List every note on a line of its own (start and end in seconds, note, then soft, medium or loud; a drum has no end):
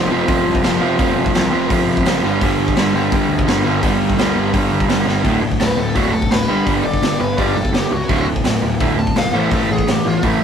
0.00 0.10 C3 medium
0.00 0.10 F3 loud
0.10 0.25 F1 medium
0.10 0.27 F2 medium
0.10 0.27 C3 medium
0.10 0.27 F3 loud
0.28 0.62 F2 medium
0.28 0.43 F2 medium
0.28 0.63 C3 loud
0.28 0.63 F3 loud
0.28 kick loud
0.28 open hi-hat medium
0.47 0.61 C2 loud
0.55 kick medium
0.63 0.79 F1 medium
0.63 0.79 F2 medium
0.63 0.79 C3 loud
0.63 0.80 F3 loud
0.63 snare loud
0.63 open hi-hat medium
0.80 0.96 F1 loud
0.80 0.98 F2 medium
0.80 0.98 C3 medium
0.80 0.98 F3 medium
0.99 1.14 F1 medium
0.99 1.34 F2 loud
0.99 1.34 C3 loud
0.99 1.34 F3 loud
0.99 kick loud
0.99 open hi-hat medium
1.17 1.31 F1 medium
1.26 kick medium
1.34 1.50 C2 medium
1.34 1.51 F2 medium
1.34 1.51 C3 medium
1.34 1.52 F3 medium
1.34 snare loud
1.34 open hi-hat medium
1.52 1.67 F1 medium
1.52 1.70 F2 medium
1.52 1.70 C3 medium
1.52 1.71 F3 loud
1.70 1.85 F1 medium
1.70 2.05 F2 loud
1.70 2.06 C3 loud
1.70 2.06 F3 loud
1.70 kick loud
1.70 open hi-hat medium
1.88 2.02 F1 loud
1.97 kick medium
2.05 2.20 F#1 loud
2.05 2.23 F2 medium
2.05 2.23 C3 loud
2.05 2.23 F3 loud
2.05 snare loud
2.05 open hi-hat medium
2.23 2.38 G1 loud
2.23 2.41 G2 loud
2.23 2.41 D3 loud
2.23 2.42 G3 loud
2.41 2.56 G1 loud
2.41 2.76 G2 medium
2.41 2.75 D3 loud
2.41 2.76 G3 loud
2.41 kick loud
2.41 open hi-hat medium
2.58 2.73 G1 loud
2.68 kick medium
2.76 2.91 G1 medium
2.76 2.94 G2 medium
2.76 2.93 D3 medium
2.76 2.94 G3 medium
2.76 snare loud
2.76 open hi-hat medium
2.94 3.09 G1 loud
2.94 3.10 G2 loud
2.94 3.11 D3 loud
2.94 3.11 G3 loud
3.11 3.45 G2 medium
3.11 3.26 G2 loud
3.11 3.46 D3 loud
3.11 3.46 G3 loud
3.11 kick loud
3.11 open hi-hat medium
3.29 3.44 D2 loud
3.39 kick loud
3.46 3.61 G1 loud
3.46 3.63 G2 loud
3.46 3.64 D3 loud
3.46 3.64 G3 loud
3.46 snare loud
3.46 open hi-hat medium
3.64 3.79 G1 loud
3.64 3.81 G2 medium
3.64 3.81 D3 loud
3.64 3.82 G3 loud
3.82 3.97 G1 loud
3.82 4.16 G2 loud
3.82 4.16 D3 loud
3.82 4.17 G3 loud
3.82 kick loud
3.82 open hi-hat medium
4.00 4.15 G1 loud
4.10 kick medium
4.17 4.32 D2 medium
4.17 4.34 G2 medium
4.17 4.34 D3 medium
4.17 4.35 G3 medium
4.17 snare loud
4.17 open hi-hat medium
4.35 4.50 G1 medium
4.35 4.51 G2 medium
4.35 4.52 D3 loud
4.35 4.52 G3 loud
4.53 4.68 G1 medium
4.53 4.87 G2 medium
4.53 4.87 D3 loud
4.53 4.87 G3 loud
4.53 kick loud
4.53 open hi-hat medium
4.71 4.86 G1 medium
4.80 kick medium
4.88 5.03 G1 medium
4.88 5.05 G2 medium
4.88 5.05 D3 medium
4.88 5.06 G3 loud
4.88 snare loud
4.88 open hi-hat medium
5.06 5.21 G1 loud
5.06 5.23 G2 medium
5.06 5.23 D3 medium
5.06 5.24 G3 loud
5.06 snare medium
5.24 5.47 D1 medium
5.24 5.40 D2 medium
5.24 5.41 A2 medium
5.24 5.41 D3 medium
5.24 kick loud
5.24 open hi-hat medium
5.42 5.58 D2 medium
5.42 5.59 A2 medium
5.52 kick medium
5.59 5.71 D1 medium
5.59 5.76 D2 medium
5.59 5.76 A2 medium
5.59 5.78 B4 medium
5.59 snare loud
5.59 open hi-hat medium
5.77 5.89 D1 medium
5.77 5.94 D2 medium
5.77 5.94 A2 medium
5.77 5.96 A4 medium
5.95 6.19 D1 medium
5.95 6.11 D2 medium
5.95 6.12 A2 medium
5.95 6.13 D3 loud
5.95 6.13 F#4 medium
5.95 kick loud
5.95 open hi-hat medium
6.13 6.29 D2 medium
6.13 6.30 A2 medium
6.13 6.31 A4 medium
6.22 kick medium
6.31 6.42 D1 medium
6.31 6.47 D2 medium
6.31 6.47 A2 medium
6.31 6.66 B4 medium
6.31 snare loud
6.31 open hi-hat medium
6.48 6.60 G1 medium
6.48 6.65 G2 loud
6.48 6.65 D3 loud
6.48 6.66 G3 medium
6.66 6.78 G1 medium
6.66 6.83 G2 medium
6.66 6.83 D3 loud
6.66 6.84 G3 medium
6.66 kick loud
6.66 open hi-hat medium
6.84 6.96 G1 medium
6.84 7.00 G2 medium
6.84 7.01 D3 medium
6.84 7.19 D5 loud
6.93 kick medium
7.02 7.14 G1 medium
7.02 7.19 G2 medium
7.02 7.19 D3 medium
7.02 snare loud
7.02 open hi-hat medium
7.20 7.33 G1 medium
7.20 7.36 G2 medium
7.20 7.37 D3 medium
7.20 7.38 B4 medium
7.38 7.50 G1 loud
7.38 7.55 G2 medium
7.38 7.55 D3 medium
7.38 7.56 G3 medium
7.38 7.55 D5 medium
7.38 kick loud
7.38 open hi-hat medium
7.55 7.67 E1 medium
7.55 7.72 G2 medium
7.55 7.73 D3 medium
7.55 7.73 A4 medium
7.65 kick medium
7.73 7.85 G1 medium
7.73 7.90 G2 medium
7.73 7.90 D3 medium
7.73 7.92 G4 medium
7.73 snare loud
7.73 open hi-hat medium
7.92 8.03 C#2 loud
7.92 8.08 G2 medium
7.92 8.08 D3 medium
7.92 8.26 F#4 loud
8.09 8.32 D1 loud
8.09 8.26 D2 medium
8.09 8.26 A2 medium
8.09 8.27 D3 loud
8.09 kick loud
8.09 open hi-hat medium
8.27 8.43 D2 medium
8.27 8.44 A2 medium
8.36 kick medium
8.44 8.57 D1 medium
8.44 8.61 D2 medium
8.44 8.61 A2 medium
8.44 snare loud
8.44 open hi-hat medium
8.62 8.74 D1 medium
8.62 8.79 D2 medium
8.62 8.79 A2 medium
8.80 9.04 D1 loud
8.80 8.96 D2 medium
8.80 8.97 A2 loud
8.80 8.97 D3 loud
8.80 kick loud
8.80 open hi-hat medium
8.97 9.14 D2 medium
8.97 9.14 A2 medium
8.97 9.16 A5 medium
9.07 kick medium
9.16 9.28 B1 medium
9.16 9.32 D2 medium
9.16 9.32 A2 medium
9.16 9.34 F5 medium
9.16 snare loud
9.16 open hi-hat medium
9.33 9.45 A1 loud
9.33 9.50 A2 loud
9.33 9.51 E3 loud
9.33 9.51 A3 loud
9.33 9.52 C5 medium
9.51 9.63 A1 medium
9.51 9.68 A2 medium
9.51 9.69 E3 loud
9.51 9.69 A3 loud
9.51 9.70 A4 medium
9.51 kick loud
9.51 open hi-hat medium
9.69 9.81 A1 medium
9.69 9.86 A2 medium
9.69 9.86 E3 medium
9.69 9.91 G#4 medium
9.79 kick medium
9.87 9.98 A1 medium
9.87 10.03 A2 medium
9.87 10.04 E3 medium
9.87 snare loud
9.87 open hi-hat medium
9.91 10.07 G4 medium
10.06 10.17 A1 medium
10.06 10.21 A2 medium
10.06 10.22 E3 medium
10.06 10.24 F4 medium
10.23 10.35 A1 loud
10.23 10.40 A2 medium
10.23 10.40 E3 medium
10.23 10.40 A3 medium
10.23 10.44 E4 loud
10.23 kick loud
10.23 open hi-hat medium
10.40 10.44 G1 medium